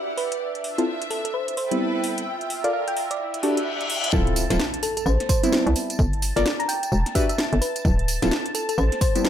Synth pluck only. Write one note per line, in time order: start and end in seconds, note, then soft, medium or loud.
0.17 0.46 B4 medium
1.10 1.20 A4 medium
1.25 1.31 A4 medium
1.34 1.55 C5 medium
1.57 1.78 C5 medium
2.64 2.70 F5 medium
2.73 2.82 F5 medium
2.88 3.08 G5 medium
3.11 3.26 D5 medium
4.83 4.92 A4 medium
4.97 5.03 A4 medium
5.06 5.27 C5 medium
5.29 5.50 C5 medium
6.60 6.67 A#5 loud
6.68 6.90 G5 medium
7.15 7.24 E5 medium
7.29 7.35 E5 medium
7.61 7.91 B4 medium
8.55 8.64 A4 medium
8.69 8.75 A4 medium
8.78 8.99 C5 medium
9.01 9.22 C5 loud